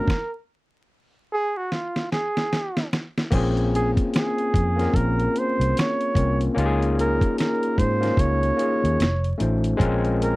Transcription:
0.00 0.32 A#4 medium
0.07 kick loud
0.07 snare medium
1.33 1.59 G#4 loud
1.57 1.74 F#4 loud
1.72 2.11 F4 medium
1.72 snare medium
1.96 snare medium
2.12 2.88 G#4 loud
2.12 snare medium
2.37 snare medium
2.53 snare medium
2.77 snare medium
2.93 snare medium
3.18 snare medium
3.31 3.97 A#1 loud
3.31 4.51 A#3 loud
3.31 4.51 C4 loud
3.31 4.52 C#4 loud
3.31 4.53 F4 loud
3.31 kick loud
3.31 closed hi-hat medium
3.31 crash loud
3.35 4.53 G#4 loud
3.57 closed hi-hat soft
3.75 3.91 G#4 medium
3.75 closed hi-hat medium
3.97 kick loud
3.97 closed hi-hat medium
4.14 4.97 G#4 medium
4.14 snare loud
4.14 closed hi-hat medium
4.38 closed hi-hat soft
4.54 4.86 F2 medium
4.54 kick loud
4.54 closed hi-hat medium
4.76 5.95 A#3 medium
4.76 5.96 C4 medium
4.76 5.97 C#4 medium
4.76 5.97 F4 medium
4.76 closed hi-hat soft
4.81 5.98 A#4 medium
4.81 snare soft
4.94 5.26 A#1 loud
4.94 5.40 A#4 medium
4.94 kick loud
4.94 closed hi-hat medium
5.20 closed hi-hat soft
5.36 5.80 C5 loud
5.36 closed hi-hat medium
5.59 5.72 C2 loud
5.59 closed hi-hat medium
5.77 6.42 C#5 loud
5.77 snare loud
5.77 closed hi-hat medium
6.01 closed hi-hat soft
6.14 6.48 C2 medium
6.14 6.50 A#3 medium
6.14 6.51 C4 medium
6.14 6.51 C#4 medium
6.14 6.52 F4 medium
6.14 kick loud
6.14 closed hi-hat medium
6.19 6.52 A#4 medium
6.41 closed hi-hat medium
6.55 7.21 C#2 loud
6.55 7.75 A#3 loud
6.55 7.75 C#4 loud
6.55 7.76 D#4 loud
6.55 7.77 F4 loud
6.55 closed hi-hat medium
6.59 6.66 G4 loud
6.66 7.80 G#4 loud
6.82 closed hi-hat soft
6.99 7.36 A#4 medium
6.99 closed hi-hat medium
7.21 kick loud
7.21 closed hi-hat medium
7.38 7.80 A#4 medium
7.38 snare loud
7.38 closed hi-hat medium
7.63 closed hi-hat soft
7.78 8.10 G#2 medium
7.78 8.22 C5 loud
7.78 kick medium
7.78 closed hi-hat medium
8.01 8.50 A#3 medium
8.01 8.51 C#4 medium
8.01 8.51 D#4 medium
8.01 8.52 F4 medium
8.01 closed hi-hat soft
8.05 8.52 A#4 medium
8.05 snare soft
8.17 8.50 C#2 loud
8.17 9.41 C#5 loud
8.17 kick loud
8.17 closed hi-hat medium
8.43 closed hi-hat soft
8.57 8.98 A#3 medium
8.57 8.99 C#4 medium
8.57 8.99 D#4 medium
8.57 9.00 F4 medium
8.57 closed hi-hat medium
8.61 9.00 G#4 medium
8.84 8.96 D#2 medium
8.84 closed hi-hat medium
9.00 9.32 F1 loud
9.00 snare loud
9.00 closed hi-hat medium
9.24 closed hi-hat soft
9.38 9.73 A1 loud
9.38 9.74 A3 medium
9.38 9.75 C#4 medium
9.38 9.75 D#4 medium
9.38 9.76 F4 medium
9.38 closed hi-hat medium
9.42 9.76 C5 medium
9.64 closed hi-hat medium
9.77 10.36 A#1 loud
9.77 10.36 G#3 loud
9.77 10.36 C4 loud
9.77 10.36 C#4 loud
9.77 10.36 F4 loud
9.77 kick loud
9.77 closed hi-hat medium
9.81 10.36 A#4 loud
10.05 closed hi-hat soft
10.22 10.36 A#4 medium
10.22 closed hi-hat medium

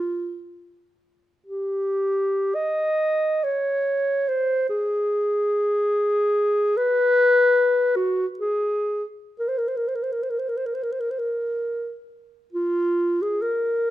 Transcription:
0.00 0.42 F4 soft
1.47 2.56 G4 soft
2.55 3.45 D#5 soft
3.44 4.30 C#5 soft
4.28 4.69 C5 soft
4.69 6.79 G#4 soft
6.77 7.97 B4 medium
7.96 8.26 F#4 medium
8.39 9.04 G#4 medium
9.40 9.50 A#4 soft
9.48 9.60 C5 soft
9.58 9.69 A#4 soft
9.68 9.78 C5 soft
9.77 9.89 A#4 soft
9.88 9.97 C5 soft
9.95 10.05 A#4 soft
10.03 10.14 C5 soft
10.12 10.24 A#4 soft
10.23 10.32 C5 soft
10.30 10.41 A#4 soft
10.39 10.50 C5 soft
10.49 10.59 A#4 soft
10.57 10.67 C5 soft
10.66 10.76 A#4 soft
10.74 10.84 C5 soft
10.83 10.93 A#4 soft
10.92 11.02 C5 soft
11.00 11.12 A#4 soft
11.11 11.20 C5 soft
11.19 11.97 A#4 soft
12.53 13.23 F4 soft
13.22 13.43 G#4 soft
13.42 13.90 A#4 soft

